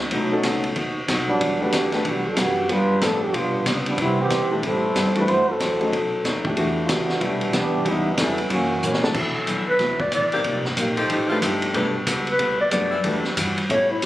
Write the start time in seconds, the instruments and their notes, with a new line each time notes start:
Already playing: upright bass D2
0.11 upright bass B1, hollow-body jazz guitar B2 A3 D#4 F#4, trombone section F#3 A3 B3 D#4, kick, ride
0.32 grand piano C#4 D#4 F#4 A4
0.43 upright bass C#2, hollow-body jazz guitar B2 A3 D#4 F#4, kick, snare, hi-hat pedal, ride
0.64 ride
0.76 upright bass D#2, hollow-body jazz guitar B2 A3 D#4 F#4, kick, ride
1.08 upright bass B1, hollow-body jazz guitar B2 A3 D#4 F#4, kick, snare, hi-hat pedal, ride
1.28 trombone section F#3 G3 B3 D4
1.41 upright bass E2, hollow-body jazz guitar E3 G3 D4 F#4, kick, ride
1.61 trombone section D3 B3 F#4 G4, grand piano A3 D4 G4 B4
1.72 upright bass D2, hollow-body jazz guitar E3 G3 D4 F#4, kick, snare, hi-hat pedal, ride
1.92 grand piano A3 D4 G4 B4, snare, ride
2.04 upright bass B1, trombone section D3 G3 B3 F#4, hollow-body jazz guitar E3 G3 D4 F#4, kick, ride
2.27 trombone section F#3 B3 D4 A4
2.36 upright bass F#2, trombone section D3 B3 F#4 G4, hollow-body jazz guitar E3 G3 D4 F#4, kick, snare, hi-hat pedal, ride
2.69 hollow-body jazz guitar G2 F3 B3 D4, upright bass G2, trombone section G3 D4 F4 B4, kick, ride
3.01 hollow-body jazz guitar G2 F3 B3 D4, upright bass A2, trombone section F3 B3 D4 A4, grand piano A3 D4 G4 B4, kick, snare, hi-hat pedal, ride
3.24 trombone section F3 B3 D4 G4
3.33 hollow-body jazz guitar G2 F3 B3 D4, upright bass B2, trombone section G3 B3 D4 F4, kick, ride
3.66 hollow-body jazz guitar G2 F3 B3 D4, upright bass C#3, kick, snare, hi-hat pedal, ride
3.86 trombone section F3 G3 B3 D4, ride
3.98 upright bass C3, hollow-body jazz guitar C3 G3 B3 E4, trombone section G3 B3 C4 E4, kick, ride
4.21 trombone section E3 B3 C4 G4
4.30 upright bass B2, hollow-body jazz guitar C3 G3 B3 E4, kick, snare, hi-hat pedal, ride
4.51 grand piano E3 A3 D4 G4
4.62 upright bass A2, hollow-body jazz guitar C3 G3 B3 E4, trombone section G3 C4 E4, kick, ride
4.66 trombone section A4
4.95 upright bass G2, hollow-body jazz guitar C3 G3 B3 E4, kick, snare, hi-hat pedal, ride
5.15 grand piano E3 A3 D4 F#4, trombone section G3 C4 E4 B4, ride
5.27 hollow-body jazz guitar F#2 E3 A3 C4, upright bass F#2, trombone section A3 E4 F#4 C5, kick, ride
5.50 trombone section F#3 C4 E4 A4
5.59 upright bass E2, hollow-body jazz guitar F#2 E3 A3 C4, kick, snare, hi-hat pedal, ride
5.80 grand piano F#3 A3 C#4 D#4, ride
5.92 upright bass B1, hollow-body jazz guitar B2 F#3 A3 D#4, kick, ride
6.24 upright bass D#2, hollow-body jazz guitar B2 F#3 A3 D#4, kick, snare, hi-hat pedal, ride
6.45 grand piano E3 A3 D4 G4, kick
6.56 upright bass E2, hollow-body jazz guitar E3 B3 D4 G4, grand piano E3 A3 D4 F#4, kick, ride
6.84 trombone section F4
6.88 upright bass C#2, hollow-body jazz guitar E3 B3 D4 G4, trombone section E3 B3 D4 F#4, kick, snare, hi-hat pedal, ride
7.09 snare
7.21 upright bass B1, hollow-body jazz guitar E3 B3 D4 G4, trombone section G3 B3 D4 E4, kick, ride
7.41 ride
7.53 upright bass D2, hollow-body jazz guitar E3 B3 D4 G4, trombone section E3 B3 D4 G4, kick, snare, hi-hat pedal, ride
7.63 upright bass B1
7.74 upright bass G1
7.85 upright bass C#2, hollow-body jazz guitar C#3 G3 B3 E4, trombone section E3 G3 B3 D#4, kick, ride
8.13 trombone section D#4
8.17 upright bass E2, hollow-body jazz guitar C#3 G3 B3 E4, grand piano F#3 B3 E4 A4, trombone section G3 B3 C#4 E4, kick, snare, hi-hat pedal, ride
8.38 ride
8.50 upright bass F#2, hollow-body jazz guitar F#2 E3 A#3 C#4, trombone section E3 A#3 C#4 F#4, kick, ride
8.81 hollow-body jazz guitar F#2 E3 A#3 C#4, upright bass A#2, hi-hat pedal
8.93 snare
9.03 grand piano B2 E3 A3 D4 A4, snare
9.14 upright bass B2, hollow-body jazz guitar B2 E3 A3 D4, grand piano F#3 B3 E4 A4, kick, crash
9.34 saxophone section D3 A3 C#4 E4
9.47 upright bass F#2, hollow-body jazz guitar B2 E3 A3 D4, kick, hi-hat pedal, ride
9.57 upright bass D2
9.68 upright bass B1, clarinet B4
9.79 upright bass D2, hollow-body jazz guitar B2 E3 A3 D4, grand piano F#3 B3 E4 F#4, kick, snare, ride
10.00 clarinet D5, kick
10.12 upright bass A1, hollow-body jazz guitar B2 E3 A3 D4, clarinet D5, kick, hi-hat pedal, ride
10.23 upright bass F#1
10.32 upright bass D1, saxophone section D#3 A#3 C4 G4, ride
10.44 upright bass C2, hollow-body jazz guitar C3 A#3 D#4, kick, ride
10.48 hollow-body jazz guitar G4
10.54 upright bass A#1
10.65 upright bass G1, snare
10.76 upright bass A#1, hollow-body jazz guitar C3 A#3 D#4 G4, kick, hi-hat pedal, ride
10.97 saxophone section F3 A3 D#4 G4, ride
11.09 upright bass A1, hollow-body jazz guitar F3 A3 D#4 G4, kick, ride
11.30 saxophone section F3 A3 D#4 F4, grand piano A3 D4 G4 B4
11.41 upright bass G1, hollow-body jazz guitar F3 A3 D#4 G4, kick, hi-hat pedal, ride
11.62 ride
11.74 upright bass B1, saxophone section F#3 A3 B3 G4, hollow-body jazz guitar G3 B3 F#4 A4, grand piano A3 D4 G4 B4, kick, ride
12.07 upright bass C#2, hollow-body jazz guitar G3 B3 F#4 A4, kick, hi-hat pedal, ride
12.27 clarinet B4, ride
12.39 upright bass D2, hollow-body jazz guitar G3 B3 F#4 A4, kick, ride
12.61 clarinet D5
12.71 upright bass F#2, hollow-body jazz guitar G3 B3 F#4 A4, grand piano A3 D4 G4 B4, clarinet D5, kick, hi-hat pedal, ride
12.91 saxophone section E3 G3 D4 E4
13.04 upright bass E2, hollow-body jazz guitar E3 G3 D4 F#4, grand piano A3 D4 G4 B4, kick, ride
13.24 snare
13.36 upright bass G2, hollow-body jazz guitar E3 G3 D4 F#4, kick, hi-hat pedal, ride
13.58 ride
13.69 upright bass A2, hollow-body jazz guitar A2 G3 C#4 F#4, grand piano B3 E4 A4 C#5, clarinet C#5, kick, ride
13.92 clarinet E4
14.02 upright bass F#2, kick, snare, hi-hat pedal, ride